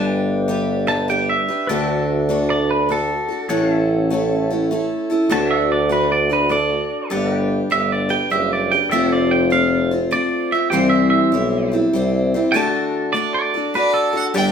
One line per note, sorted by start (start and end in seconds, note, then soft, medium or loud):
0.00 1.44 G1 medium
0.00 0.47 G3 medium
0.00 0.49 D4 medium
0.00 0.49 G4 medium
0.00 0.49 B4 medium
0.00 1.67 B4 medium
0.00 1.67 D5 medium
0.00 0.14 A5 medium
0.14 1.68 G5 medium
0.48 0.88 G3 medium
0.48 0.88 D4 medium
0.48 0.87 G4 medium
0.48 0.86 B4 medium
0.87 1.08 D4 soft
0.87 1.09 G4 soft
0.87 1.08 B4 soft
0.87 1.08 A5 medium
1.08 1.48 G3 soft
1.08 1.49 D4 medium
1.08 1.49 G4 medium
1.08 1.47 B4 medium
1.08 1.29 G5 medium
1.29 2.46 E5 medium
1.48 1.69 D4 soft
1.48 1.70 G4 soft
1.48 1.69 B4 soft
1.67 3.25 D2 medium
1.67 2.29 D3 medium
1.67 2.28 A3 medium
1.67 2.28 D4 medium
1.67 2.29 F#4 medium
1.67 2.30 A4 medium
1.67 1.92 B4 medium
1.67 3.48 D5 medium
1.67 1.90 G5 medium
1.90 3.47 A4 medium
1.90 3.49 F#5 medium
2.29 2.88 A3 medium
2.29 2.88 D4 medium
2.29 2.89 F#4 medium
2.29 2.91 A4 medium
2.50 2.69 D5 medium
2.71 2.90 B4 medium
2.89 3.29 A3 soft
2.89 3.29 D4 medium
2.89 3.29 F#4 medium
2.89 3.27 A4 medium
2.89 4.08 A4 medium
3.28 3.49 D4 soft
3.28 3.50 F#4 soft
3.28 3.50 A4 soft
3.49 4.90 A1 medium
3.49 4.10 A2 medium
3.49 4.10 E3 medium
3.49 4.10 A3 medium
3.49 4.10 C#4 medium
3.49 4.10 E4 medium
3.49 5.28 A4 medium
3.49 4.13 A4 medium
3.49 5.29 C#5 medium
3.49 3.75 F#5 medium
3.75 5.29 E5 medium
4.10 4.50 A3 medium
4.10 4.50 C#4 medium
4.10 4.50 E4 medium
4.10 4.49 A4 medium
4.50 4.70 A3 soft
4.50 4.71 C#4 soft
4.50 4.71 E4 soft
4.50 4.71 A4 medium
4.71 5.10 A3 medium
4.71 5.11 C#4 medium
4.71 5.10 E4 medium
4.71 5.08 A4 medium
5.10 5.29 A3 soft
5.10 5.30 C#4 soft
5.10 5.31 E4 medium
5.10 5.31 A4 medium
5.29 6.86 D2 medium
5.29 5.90 D3 medium
5.29 5.88 A3 medium
5.29 5.90 D4 medium
5.29 5.90 F#4 medium
5.29 7.10 A4 medium
5.29 5.91 A4 medium
5.29 5.52 C#5 medium
5.29 5.50 A5 medium
5.34 5.59 E5 medium
5.51 7.10 D5 medium
5.51 5.70 E5 medium
5.59 7.11 F#5 medium
5.72 5.91 D5 medium
5.89 6.30 A3 medium
5.89 6.31 D4 medium
5.89 6.30 F#4 medium
5.89 6.28 A4 medium
5.89 6.11 B4 medium
6.12 6.31 D5 medium
6.29 6.49 D4 soft
6.29 6.50 F#4 soft
6.29 6.51 A4 soft
6.29 6.51 B4 medium
6.49 7.10 A3 soft
6.49 7.10 D4 medium
6.49 7.11 F#4 medium
6.49 7.11 A4 medium
6.49 7.10 D5 loud
7.10 7.64 G1 medium
7.10 7.69 G3 medium
7.10 7.70 D4 medium
7.10 7.71 G4 medium
7.10 7.36 A4 medium
7.10 7.71 B4 medium
7.10 8.90 D5 medium
7.10 7.33 F#5 medium
7.33 8.89 B4 medium
7.33 8.91 G5 medium
7.70 8.23 G1 medium
7.70 8.11 G3 medium
7.70 8.10 D4 medium
7.70 8.09 G4 medium
7.70 8.08 B4 medium
7.70 7.91 E5 medium
7.92 8.12 D5 medium
8.09 8.30 D4 soft
8.09 8.31 G4 medium
8.09 8.31 B4 soft
8.09 8.31 G5 medium
8.30 8.84 F#1 medium
8.30 8.71 G3 medium
8.30 8.71 D4 medium
8.30 8.72 G4 medium
8.30 8.70 B4 medium
8.30 8.51 E5 loud
8.53 8.72 D5 medium
8.72 8.92 D4 soft
8.72 8.93 G4 soft
8.72 8.92 B4 soft
8.72 8.91 G5 loud
8.90 10.32 F1 loud
8.90 9.52 F3 medium
8.90 9.49 A3 medium
8.90 9.51 C4 medium
8.90 9.52 F4 medium
8.90 10.70 A4 medium
8.90 9.52 C5 medium
8.90 9.16 D5 medium
8.90 9.12 E5 loud
8.90 9.16 G5 medium
9.12 10.71 C5 medium
9.12 9.32 D5 medium
9.12 10.71 F5 medium
9.31 9.51 G5 medium
9.50 9.91 A3 medium
9.50 9.92 C4 medium
9.50 9.91 F4 medium
9.50 9.90 C5 medium
9.50 9.91 F5 loud
9.91 10.10 C4 soft
9.91 10.12 F4 soft
9.91 10.12 C5 medium
10.11 10.52 A3 medium
10.11 10.52 C4 medium
10.11 10.53 F4 medium
10.11 10.51 C5 medium
10.11 10.52 D5 loud
10.52 10.72 C4 soft
10.52 10.73 F4 soft
10.52 10.73 C5 soft
10.52 10.70 E5 loud
10.70 11.25 C2 medium
10.70 11.33 C3 medium
10.70 11.33 E3 medium
10.70 11.31 G3 medium
10.70 11.33 C4 medium
10.70 11.33 E4 medium
10.70 12.51 G4 medium
10.70 12.52 C5 medium
10.70 11.34 C5 medium
10.70 10.93 F5 medium
10.70 10.89 G5 medium
10.90 11.09 E5 medium
10.90 12.52 E5 medium
11.10 11.70 E5 loud
11.32 11.85 B1 medium
11.32 11.72 G3 medium
11.32 11.72 C4 medium
11.32 11.72 E4 medium
11.32 11.70 C5 medium
11.72 11.92 G3 soft
11.72 11.94 C4 medium
11.72 11.94 E4 medium
11.72 11.93 C5 medium
11.93 12.45 C2 medium
11.93 12.33 G3 medium
11.93 12.34 C4 medium
11.93 12.34 E4 medium
11.93 12.33 C5 medium
12.34 12.54 G3 soft
12.34 12.55 C4 soft
12.34 12.55 E4 soft
12.34 12.54 C5 medium
12.52 13.14 D3 medium
12.52 13.13 A3 medium
12.52 13.14 D4 medium
12.52 12.72 G4 medium
12.52 14.32 A4 medium
12.52 14.33 D5 medium
12.52 13.11 A5 loud
12.56 13.15 F#4 medium
12.56 13.15 A4 medium
12.72 14.32 F#4 medium
13.13 13.54 A3 medium
13.13 13.54 D4 medium
13.13 13.55 F#4 medium
13.13 13.33 D5 medium
13.17 13.53 A4 medium
13.34 13.73 D5 medium
13.54 13.74 D4 soft
13.54 13.75 F#4 soft
13.54 13.75 A4 soft
13.74 14.14 A3 medium
13.74 14.14 D4 medium
13.74 14.13 F#4 medium
13.74 14.12 A4 medium
13.74 13.93 B4 medium
13.74 14.13 D5 medium
13.94 14.33 A4 loud
14.13 14.33 D4 soft
14.13 14.34 F#4 soft
14.13 14.34 A4 soft
14.17 14.26 F#5 medium
14.34 14.52 G1 loud
14.34 14.52 G3 medium
14.34 14.52 D4 medium
14.34 14.52 G4 medium
14.34 14.52 A4 medium
14.34 14.52 B4 medium
14.34 14.52 D5 medium
14.34 14.52 G5 medium